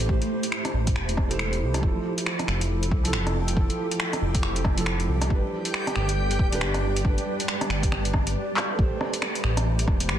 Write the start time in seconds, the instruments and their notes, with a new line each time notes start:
Already playing: felt piano A3 G4 C5, ambient pad A3 E4 G4 C5
0.04 felt piano A3
0.09 felt piano G4 C5, kick
0.22 closed hi-hat
0.43 closed hi-hat
0.52 finger snap
0.65 cross-stick, closed hi-hat
0.74 detuned saw bass A1
0.87 kick, closed hi-hat
0.96 detuned saw bass E1, finger snap
1.09 closed hi-hat
1.17 kick, cross-stick
1.29 felt piano A3 G4, closed hi-hat
1.33 felt piano C5
1.39 detuned saw bass E1, finger snap
1.53 closed hi-hat
1.61 detuned saw bass C2
1.74 cross-stick, closed hi-hat
1.79 detuned saw bass F1, felt piano F3 E4, ambient pad F3 A4, synth texture G4 G5, kick
1.87 felt piano A4
2.18 closed hi-hat
2.26 finger snap
2.39 cross-stick, closed hi-hat
2.48 detuned saw bass F1, finger snap
2.61 closed hi-hat
2.83 closed hi-hat
2.92 detuned saw bass C2, kick
3.03 felt piano F3 E4 A4, closed hi-hat
3.13 detuned saw bass F1, finger snap
3.27 cross-stick, closed hi-hat
3.48 closed hi-hat
3.53 detuned saw bass F1, felt piano F3 E4, kick
3.60 felt piano A4
3.70 closed hi-hat
3.91 closed hi-hat
4.00 finger snap
4.13 cross-stick, closed hi-hat
4.22 detuned saw bass F1
4.35 kick, closed hi-hat
4.43 detuned saw bass F1, finger snap
4.56 closed hi-hat
4.65 kick, cross-stick
4.76 felt piano F3 E4, closed hi-hat
4.80 felt piano A4
4.86 finger snap
5.00 closed hi-hat
5.09 detuned saw bass C2
5.21 cross-stick, closed hi-hat
5.27 detuned saw bass G1, felt piano G3, ambient pad G3 G4 B4 D5, kick
5.31 felt piano D4 B4
5.65 closed hi-hat
5.74 finger snap
5.87 cross-stick, closed hi-hat
5.96 detuned saw bass G1, finger snap
6.09 closed hi-hat
6.31 closed hi-hat
6.39 detuned saw bass D1, kick
6.51 felt piano G3 D4 B4, closed hi-hat
6.61 detuned saw bass G1, finger snap
6.74 cross-stick, closed hi-hat
6.96 closed hi-hat
7.01 detuned saw bass G1, felt piano G3, kick
7.05 felt piano D4 B4
7.18 closed hi-hat
7.40 closed hi-hat
7.48 finger snap
7.61 cross-stick, closed hi-hat
7.70 detuned saw bass G1, finger snap
7.83 kick, closed hi-hat
7.92 detuned saw bass G1, finger snap, cross-stick
8.05 closed hi-hat
8.14 detuned saw bass G1, kick, cross-stick
8.27 closed hi-hat
8.57 clap
8.75 felt piano A3, ambient pad A3 E4 G4 C5, synth texture G4 G5
8.79 detuned saw bass A1, felt piano G4, kick
8.83 felt piano C5
9.01 cross-stick
9.13 closed hi-hat
9.22 finger snap, cross-stick
9.35 closed hi-hat
9.44 detuned saw bass A1, finger snap
9.57 cross-stick, closed hi-hat
9.79 closed hi-hat
9.87 detuned saw bass E1, kick, cross-stick
10.00 closed hi-hat
10.09 detuned saw bass A1, finger snap